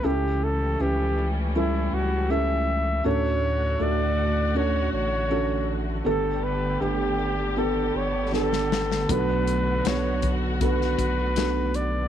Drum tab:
HH |----------------|----------------|----------------|x-x-x-x-x-x-x-x-|
SD |----------------|----------------|------------oooo|----o----o--o---|
BD |----------------|----------------|----------------|o-----o-o-o-----|